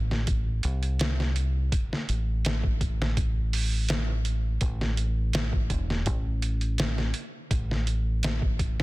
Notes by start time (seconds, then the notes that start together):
Already playing: A1
0.11 snare
0.27 kick, closed hi-hat
0.63 C2, closed hi-hat
0.83 closed hi-hat
0.99 snare, closed hi-hat
1.20 snare
1.36 closed hi-hat
1.72 kick, closed hi-hat
1.93 snare
2.09 A1, closed hi-hat
2.45 snare, closed hi-hat
2.64 kick
2.81 kick, closed hi-hat
3.02 snare
3.17 kick, closed hi-hat
3.53 open hi-hat
3.89 snare, closed hi-hat
4.25 closed hi-hat
4.61 A1, kick, closed hi-hat
4.81 snare
4.97 closed hi-hat
5.33 snare, closed hi-hat
5.53 kick
5.70 E1, kick, closed hi-hat
5.90 snare
6.06 A1, kick, closed hi-hat
6.42 closed hi-hat
6.61 closed hi-hat
6.78 snare, closed hi-hat
6.98 snare
7.14 closed hi-hat
7.51 A1, kick, closed hi-hat
7.71 snare
7.87 closed hi-hat
8.23 snare, closed hi-hat
8.42 kick
8.59 kick, closed hi-hat
8.80 snare